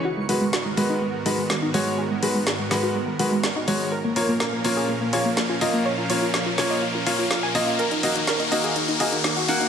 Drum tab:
HH |--o---o---o---o-|--o---o---o---o-|--o---o---o---o-|--o---o---o---o-|
SD |----o-------o---|----o-o-----o---|----o-------o---|----o-o-----o---|

HH |xxoxxxoxxxoxxxox|
SD |----o-------o---|